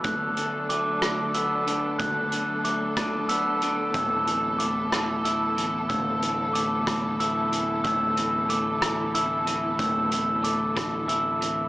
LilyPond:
<<
  \new Staff \with { instrumentName = "Glockenspiel" } { \time 6/8 \key a \mixolydian \tempo 4. = 62 fis'''4 d'''4 e'''4 | fis'''4 d'''4 e'''4 | e'''4 d'''4 e'''4 | e'''4 d'''4 e'''4 |
e'''4 d'''4 e'''4 | e'''4 d'''4 e'''4 | }
  \new Staff \with { instrumentName = "String section" } { \time 6/8 \key a \mixolydian << { <fis b a'>2.~ | <fis b a'>2.~ | <fis b a'>2.~ | <fis b a'>2.~ |
<fis b a'>2.~ | <fis b a'>2. | } \\ { <a d'>2.~ | <a d'>2. | e'2.~ | e'2.~ |
e'2.~ | e'2. | } >> }
  \new Staff \with { instrumentName = "Clean electric guitar" } { \clef bass \time 6/8 \key a \mixolydian d,8 d8 a8 d8 b8 d8 | d,8 d8 a8 d8 b8 d8 | a,8 e8 a8 e8 e'8 e8 | a,8 e8 a8 e8 e'8 e8 |
a,8 e8 a8 e8 e'8 e8 | a,8 e8 a8 e8 e'8 e8 | }
  \new Staff \with { instrumentName = "Picked electric bass" } { \clef bass \time 6/8 \key a \mixolydian r2. | r2. | d,,2. | d,,2. |
d,,2. | d,,2. | }
  \new DrumStaff \with { instrumentName = "Drums" } \drummode { \time 6/8 <hh bd>8 hh8 hh8 <hh ss>8 hh8 hh8 | <hh bd>8 hh8 hh8 <hh bd ss>8 hh8 hh8 | <hh bd>8 hh8 hh8 <hh ss>8 hh8 hh8 | <hh bd>8 hh8 hh8 <hh bd ss>8 hh8 hh8 |
<hh bd>8 hh8 hh8 <hh ss>8 hh8 hh8 | <hh bd>8 hh8 hh8 <hh bd ss>8 hh8 hh8 | }
>>